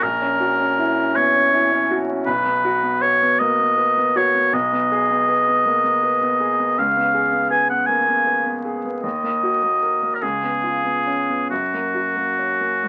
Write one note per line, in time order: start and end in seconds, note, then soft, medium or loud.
0.02 2.23 A#1 medium
0.02 1.17 A#4 medium
0.22 0.51 C#4 soft
0.40 0.70 F#4 soft
0.59 0.89 C#4 soft
0.78 1.08 E4 soft
0.98 1.28 C#4 soft
1.16 1.35 B3 soft
1.16 2.00 C#5 medium
1.36 1.65 C#4 soft
1.53 1.83 E4 soft
1.72 2.01 C#4 soft
1.91 2.20 F#4 medium
2.09 2.27 C#4 soft
2.26 4.49 B1 medium
2.26 3.03 B4 medium
2.46 2.75 B3 soft
2.65 2.94 F#4 soft
2.83 3.13 B3 soft
3.01 3.32 B4 soft
3.01 3.41 C#5 medium
3.22 3.52 B3 soft
3.40 3.59 A#3 soft
3.40 4.18 D#5 medium
3.59 3.89 B3 soft
3.78 4.08 B4 soft
3.97 4.27 B3 soft
4.16 4.46 F#4 medium
4.16 4.56 C#5 medium
4.35 4.53 B3 soft
4.53 6.74 B1 medium
4.53 6.80 D#5 medium
4.72 5.02 B3 soft
4.92 5.21 G#4 soft
5.10 5.40 B3 soft
5.29 5.58 B4 soft
5.47 5.77 B3 soft
5.65 5.84 A#3 soft
5.84 6.14 B3 soft
6.03 6.33 B4 soft
6.21 6.52 B3 soft
6.40 6.70 G#4 soft
6.59 6.78 B3 soft
6.78 9.00 C#2 soft
6.78 7.50 F5 medium
6.96 7.26 B3 soft
7.14 7.44 G#4 soft
7.32 7.62 B3 soft
7.50 7.81 B4 soft
7.50 7.69 G#5 medium
7.69 8.00 B3 soft
7.69 7.88 F#5 medium
7.87 8.08 A#3 soft
7.87 8.64 G#5 medium
8.07 8.38 B3 soft
8.27 8.58 B4 soft
8.46 8.77 B3 soft
8.65 8.96 G#4 soft
8.85 9.04 B3 soft
9.02 10.19 D#2 soft
9.02 10.16 D#5 medium
9.23 9.55 A#3 soft
9.43 9.75 F#4 soft
9.63 9.94 A#3 soft
9.82 10.14 A#4 soft
10.02 10.22 A#3 soft
10.15 10.23 A#4 soft
10.22 11.47 C#2 soft
10.22 11.50 G#4 medium
10.43 10.77 B3 soft
10.64 10.98 F4 soft
10.85 11.20 B3 soft
11.07 11.42 C#4 soft
11.29 11.51 B3 soft
11.50 12.88 F#2 soft
11.50 12.88 F#4 soft
11.74 12.08 A#3 soft
11.95 12.29 F#4 soft
12.17 12.51 A#3 soft
12.39 12.73 C#4 soft
12.60 12.88 A#3 soft
12.83 12.88 G#3 soft